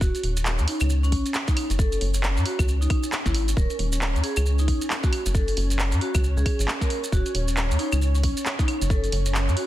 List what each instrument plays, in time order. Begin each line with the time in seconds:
0.01 analog synth bass D#1, string machine C#4 C#5, vibraphone F#4, kick, maracas
0.15 closed hi-hat, maracas
0.23 analog synth bass D#1, open hi-hat
0.37 closed hi-hat, maracas
0.46 clap, maracas
0.58 analog synth bass D#2, maracas
0.68 vibraphone D#4, open hi-hat
0.80 analog synth bass C#2, closed hi-hat, claves, maracas
0.90 maracas
1.03 vibraphone C#4, maracas
1.12 analog synth bass A#1, kick, open hi-hat
1.26 closed hi-hat, maracas
1.34 clap, snare, maracas
1.48 vibraphone D#4, kick, snare, closed hi-hat, maracas
1.57 open hi-hat, claves
1.70 analog synth bass F#1, closed hi-hat, maracas
1.79 vibraphone A4, kick, maracas
1.92 closed hi-hat, maracas
2.01 analog synth bass F#1, open hi-hat
2.14 closed hi-hat, maracas
2.23 clap, maracas
2.37 analog synth bass F#2, maracas
2.46 vibraphone F#4, open hi-hat
2.59 analog synth bass C#2, kick, closed hi-hat, claves, maracas
2.68 maracas
2.81 vibraphone D#4, maracas
2.90 kick, open hi-hat, claves
3.03 closed hi-hat, maracas
3.12 clap, snare, maracas
3.26 analog synth bass G#1, vibraphone E4, kick, snare, closed hi-hat, maracas
3.34 open hi-hat
3.48 closed hi-hat, maracas
3.57 analog synth bass D#1, vibraphone A#4, kick, maracas
3.70 closed hi-hat, maracas
3.79 analog synth bass D#1, open hi-hat
3.92 closed hi-hat, maracas
4.01 clap, maracas
4.15 analog synth bass D#2, maracas
4.23 vibraphone G#4, open hi-hat
4.36 analog synth bass C#2, closed hi-hat, claves, maracas
4.46 maracas
4.59 vibraphone D#4, maracas
4.68 analog synth bass A#1, kick, open hi-hat
4.81 closed hi-hat, maracas
4.90 clap, snare, maracas
5.04 vibraphone F#4, kick, snare, closed hi-hat, maracas
5.13 open hi-hat, claves
5.26 analog synth bass F#1, closed hi-hat, maracas
5.34 vibraphone A4, kick, maracas
5.48 open hi-hat, maracas
5.57 analog synth bass F#1, open hi-hat
5.70 closed hi-hat, maracas
5.79 clap, maracas
5.92 analog synth bass F#2, closed hi-hat, maracas
6.01 vibraphone F#4, open hi-hat
6.15 analog synth bass C#2, kick, closed hi-hat, claves, maracas
6.24 maracas
6.37 analog synth bass C#2, vibraphone G#4, maracas
6.46 kick, open hi-hat, claves
6.59 analog synth bass G#1, closed hi-hat, maracas
6.68 clap, snare, maracas
6.81 vibraphone A#4, kick, snare, closed hi-hat, maracas
6.90 open hi-hat
7.04 closed hi-hat, maracas
7.12 analog synth bass D#1, vibraphone F#4, kick, maracas
7.26 closed hi-hat, maracas
7.35 analog synth bass D#1, open hi-hat
7.48 closed hi-hat, maracas
7.57 clap, maracas
7.70 analog synth bass D#2, maracas
7.79 vibraphone D#4, open hi-hat
7.92 analog synth bass C#2, closed hi-hat, claves, maracas
8.02 maracas
8.15 vibraphone C#4, maracas
8.23 analog synth bass A#1, kick, open hi-hat
8.37 closed hi-hat, maracas
8.46 clap, snare, maracas
8.59 vibraphone D#4, kick, snare, closed hi-hat, maracas
8.68 open hi-hat, claves
8.81 analog synth bass F#1, closed hi-hat, maracas
8.90 vibraphone A4, kick, maracas
9.04 closed hi-hat, maracas
9.12 analog synth bass F#1, open hi-hat
9.26 closed hi-hat, maracas
9.35 clap, maracas
9.48 analog synth bass F#2, maracas
9.57 vibraphone F#4, open hi-hat